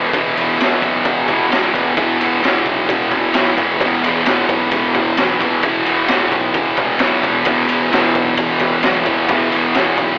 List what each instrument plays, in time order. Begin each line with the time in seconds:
Already playing: distorted electric guitar E2 B2 E3
0.12 fingered electric bass E1, distorted electric guitar E2 B2, kick, ride
0.18 distorted electric guitar E3
0.37 fingered electric bass E1, distorted electric guitar E3, ride
0.43 distorted electric guitar B2
0.58 fingered electric bass E1, distorted electric guitar E2 B2, snare, ride
0.63 distorted electric guitar E3
0.81 fingered electric bass B1, kick, ride
1.05 fingered electric bass E1, kick, ride
1.28 distorted electric guitar E3, kick, ride
1.33 distorted electric guitar B2
1.50 fingered electric bass B1, distorted electric guitar E2 B2, snare, ride
1.55 distorted electric guitar E3
1.74 fingered electric bass E1, distorted electric guitar E3, kick, ride
1.79 distorted electric guitar B2
1.97 fingered electric bass E1, distorted electric guitar E2 B2, kick, ride
2.02 distorted electric guitar E3
2.20 fingered electric bass E1, distorted electric guitar E3, ride
2.24 distorted electric guitar B2
2.42 fingered electric bass E1, distorted electric guitar E2 B2, snare, ride
2.48 distorted electric guitar E3
2.65 fingered electric bass B1, kick, ride
2.88 fingered electric bass E1, kick, ride
3.11 distorted electric guitar E3, kick, ride
3.17 distorted electric guitar B2
3.34 fingered electric bass B1, distorted electric guitar E2, snare, ride
3.38 distorted electric guitar B2 E3
3.58 fingered electric bass E1, distorted electric guitar E3, kick, ride
3.63 distorted electric guitar B2
3.81 fingered electric bass E1, distorted electric guitar E2, kick, ride
3.85 distorted electric guitar B2 E3
4.02 fingered electric bass E1, distorted electric guitar E3, ride
4.10 distorted electric guitar B2
4.26 fingered electric bass E1, distorted electric guitar E2 B2, snare, ride
4.32 distorted electric guitar E3
4.49 fingered electric bass B1, kick, ride
4.71 fingered electric bass E1, kick, ride
4.95 distorted electric guitar E3, kick, ride
5.01 distorted electric guitar B2
5.17 fingered electric bass B1, distorted electric guitar E2 B2, snare, ride
5.23 distorted electric guitar E3
5.40 fingered electric bass E1, distorted electric guitar E3, kick, ride
5.45 distorted electric guitar B2
5.63 fingered electric bass E1, distorted electric guitar E2, kick, ride
5.68 distorted electric guitar B2 E3
5.86 fingered electric bass E1, distorted electric guitar E3, ride
5.92 distorted electric guitar B2
6.08 fingered electric bass E1, distorted electric guitar E2 B2, snare, ride
6.14 distorted electric guitar E3
6.32 fingered electric bass B1, kick, ride
6.54 fingered electric bass E1, kick, ride
6.77 distorted electric guitar E3, kick, ride
6.83 distorted electric guitar B2
6.99 fingered electric bass B1, distorted electric guitar E2, snare, ride
7.04 distorted electric guitar B2 E3
7.22 fingered electric bass E1, distorted electric guitar E3, kick, ride
7.28 distorted electric guitar B2
7.45 fingered electric bass E1, distorted electric guitar E2, kick, ride
7.49 distorted electric guitar B2 E3
7.69 fingered electric bass E1, distorted electric guitar E3, ride
7.75 distorted electric guitar B2
7.92 fingered electric bass E1, distorted electric guitar E2 B2, snare, ride
7.96 distorted electric guitar E3
8.15 fingered electric bass B1, kick, ride
8.37 fingered electric bass E1, kick, ride
8.59 distorted electric guitar E3, kick, ride
8.66 distorted electric guitar B2
8.83 fingered electric bass B1, distorted electric guitar E2 B2, snare, ride
8.89 distorted electric guitar E3
9.06 fingered electric bass E1, distorted electric guitar E3, kick, ride
9.11 distorted electric guitar B2
9.28 fingered electric bass E1, distorted electric guitar E2 B2, kick, ride
9.34 distorted electric guitar E3
9.52 fingered electric bass E1, distorted electric guitar E3, ride
9.56 distorted electric guitar B2
9.74 fingered electric bass E1, distorted electric guitar E2, snare, ride
9.80 distorted electric guitar B2 E3
9.97 fingered electric bass B1, kick, ride